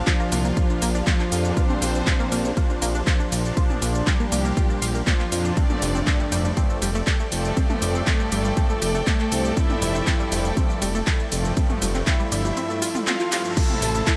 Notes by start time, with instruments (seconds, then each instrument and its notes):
Already playing: analog synth pad A#2 F3 D4, ambient pad F3 F4 D5 F5, string section D4 G4 C5 F5
0.07 analog synth lead F3, synth arpeggio sound F4, violin section F4, kick, clap, ride, shaker
0.20 synth arpeggio sound A#3, shaker
0.32 analog synth bass C2, synth arpeggio sound A#3, open hi-hat, ride, shaker
0.45 synth arpeggio sound A#3, shaker
0.57 synth arpeggio sound F4, kick, ride, shaker
0.70 synth arpeggio sound D4, shaker
0.82 analog synth bass A#1, synth arpeggio sound A#3, open hi-hat, ride, shaker
0.95 synth arpeggio sound D4, shaker
1.07 analog synth lead F3, violin section F4, synth arpeggio sound F4, kick, clap, mid tom, ride, shaker
1.20 synth arpeggio sound D4, clap, shaker
1.32 analog synth bass F2, analog synth pad A#2 F3 D4, open hi-hat, ride, shaker
1.45 shaker
1.57 analog synth pad A#2 F3 D4, analog synth lead C4, synth arpeggio sound F4, violin section C5, ambient pad C6, kick, ride, shaker
1.70 synth arpeggio sound D4, mid tom, shaker
1.82 analog synth bass A#1, synth arpeggio sound A#3, open hi-hat, ride, shaker
1.95 shaker
2.07 synth arpeggio sound F4, kick, clap, ride, shaker
2.20 synth arpeggio sound A#3, shaker
2.32 analog synth bass A#1, synth arpeggio sound A#3, open hi-hat, ride, shaker
2.45 synth arpeggio sound A#3, shaker
2.57 synth arpeggio sound F4, kick, ride, shaker
2.70 synth arpeggio sound D4, shaker
2.82 analog synth bass A#1, synth arpeggio sound A#3, open hi-hat, ride, shaker
2.95 synth arpeggio sound D4, shaker
3.07 synth arpeggio sound F4, kick, clap, ride, shaker
3.20 synth arpeggio sound D4, shaker
3.32 analog synth bass A#1, analog synth pad A#2 F3 D4, open hi-hat, ride, shaker
3.45 shaker
3.57 analog synth pad A#2 F3 D4, synth arpeggio sound F4, kick, ride, shaker
3.70 synth arpeggio sound D4, mid tom, shaker
3.82 analog synth bass A#1, synth arpeggio sound A#3, open hi-hat, ride, shaker
3.95 shaker
4.07 analog synth lead G3, synth arpeggio sound F4, violin section G4, kick, clap, ride, shaker
4.20 synth arpeggio sound A#3, shaker
4.32 analog synth bass C2, synth arpeggio sound A#3, open hi-hat, ride, shaker
4.45 synth arpeggio sound A#3, shaker
4.57 synth arpeggio sound F4, kick, ride, shaker
4.70 synth arpeggio sound D4, shaker
4.82 analog synth bass A#1, synth arpeggio sound F5, open hi-hat, ride, shaker
4.95 synth arpeggio sound A#3, shaker
5.07 analog synth lead F3, synth arpeggio sound A#3, violin section F4, kick, clap, mid tom, ride, shaker
5.20 synth arpeggio sound A#3, clap, shaker
5.32 analog synth bass F2, analog synth pad A#2 F3 D4, synth arpeggio sound F4, open hi-hat, ride, shaker
5.45 synth arpeggio sound D4, shaker
5.57 analog synth pad G2 F3 A3, synth arpeggio sound C4, analog synth lead D4, ambient pad A4 C5 G5, violin section D5, kick, ride, shaker
5.70 synth arpeggio sound A3, mid tom, shaker
5.82 analog synth bass F1, synth arpeggio sound G3, string section A4, open hi-hat, ride, shaker
5.95 synth arpeggio sound C4, shaker
6.07 synth arpeggio sound C4, kick, clap, ride, shaker
6.15 string section D5
6.20 synth arpeggio sound G3, shaker
6.32 analog synth bass F1, synth arpeggio sound G3, open hi-hat, ride, shaker
6.45 synth arpeggio sound G3, shaker
6.57 synth arpeggio sound C4, kick, ride, shaker
6.70 synth arpeggio sound A3, shaker
6.82 analog synth bass F1, synth arpeggio sound G3, open hi-hat, ride, shaker
6.95 synth arpeggio sound A3, shaker
7.07 kick, clap, ride, shaker
7.20 synth arpeggio sound A3, shaker
7.32 analog synth bass F1, analog synth pad G2 F3 A3, open hi-hat, ride, shaker
7.45 shaker
7.57 analog synth pad G2 F3 A3, synth arpeggio sound C4, kick, ride, shaker
7.70 synth arpeggio sound A3, mid tom, shaker
7.82 analog synth bass F1, synth arpeggio sound G3, open hi-hat, ride, shaker
7.95 synth arpeggio sound C4, shaker
8.07 analog synth lead A3, synth arpeggio sound C4, violin section A4, kick, clap, ride, shaker
8.20 synth arpeggio sound G3, shaker
8.32 analog synth bass G1, synth arpeggio sound G3, open hi-hat, ride, shaker
8.45 synth arpeggio sound G3, shaker
8.57 synth arpeggio sound C4, kick, ride, shaker
8.70 synth arpeggio sound A3, shaker
8.82 analog synth bass F1, synth arpeggio sound G3, open hi-hat, ride, shaker
8.95 synth arpeggio sound A3, shaker
9.07 analog synth lead A3, violin section A4, kick, clap, mid tom, ride, shaker
9.20 synth arpeggio sound A3, clap, shaker
9.32 analog synth bass C2, analog synth pad G2 F3 A3, open hi-hat, ride, shaker
9.45 shaker
9.57 analog synth pad G2 F3 A3, synth arpeggio sound C4, analog synth lead E4, violin section E5, ambient pad A5, kick, ride, shaker
9.70 synth arpeggio sound A3, mid tom, shaker
9.82 analog synth bass F1, synth arpeggio sound G3, open hi-hat, ride, shaker
9.95 synth arpeggio sound C4, shaker
10.07 synth arpeggio sound C4, kick, clap, ride, shaker
10.20 synth arpeggio sound G3, shaker
10.32 analog synth bass F1, synth arpeggio sound G3, open hi-hat, ride, shaker
10.45 synth arpeggio sound G3, shaker
10.57 synth arpeggio sound C4, kick, ride, shaker
10.70 synth arpeggio sound A3, shaker
10.82 analog synth bass F1, synth arpeggio sound G3, open hi-hat, ride, shaker
10.95 synth arpeggio sound A3, shaker
11.07 kick, clap, ride, shaker
11.20 synth arpeggio sound A3, shaker
11.32 analog synth bass F1, analog synth pad G2 F3 A3, open hi-hat, ride, shaker
11.45 shaker
11.57 analog synth pad G2 F3 A3, synth arpeggio sound C4, kick, ride, shaker
11.70 synth arpeggio sound A3, mid tom, shaker
11.82 analog synth bass F1, synth arpeggio sound G3, open hi-hat, ride, shaker
11.95 synth arpeggio sound C4, clap, shaker
12.07 synth arpeggio sound C4, analog synth lead E4, violin section E5, kick, clap, ride, shaker
12.20 synth arpeggio sound G3, shaker
12.32 analog synth bass G1, synth arpeggio sound G3, open hi-hat, ride, shaker
12.45 synth arpeggio sound G3, shaker
12.57 synth arpeggio sound C4, ride, shaker
12.70 synth arpeggio sound A3, shaker
12.82 synth arpeggio sound F4, open hi-hat, ride, shaker
12.95 synth arpeggio sound F4, mid tom, shaker
13.07 synth arpeggio sound C4, analog synth lead F4, violin section F5, clap, mid tom, ride, shaker
13.20 synth arpeggio sound F4, clap, shaker
13.32 analog synth pad G2 F3 A3, synth arpeggio sound G4, clap, open hi-hat, ride, shaker
13.45 shaker
13.57 analog synth pad C3 A3 E4, synth arpeggio sound E4, analog synth lead A4, violin section A5, kick, ride, crash, shaker
13.70 synth arpeggio sound C4, mid tom
13.82 analog synth bass A1, synth arpeggio sound A3, open hi-hat, ride, shaker
13.95 synth arpeggio sound E4, shaker
14.07 synth arpeggio sound E4, kick, clap, ride, shaker